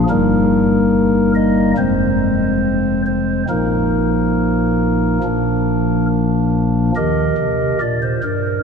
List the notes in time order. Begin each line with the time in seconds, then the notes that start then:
0.10 G1 G2 G3 A#3 D#4 A#4
1.35 D#5
1.77 F1 F2 G#3 C4 C5
3.06 C5
3.49 A#1 A#2 F3 A#3 D#4 A#4
5.23 A#1 A#2 F3 A#3 D4
6.96 D#2 D#3 G4 A#4 D#5
7.38 C3
7.81 A#2 D5
8.03 C5
8.23 G2 A#4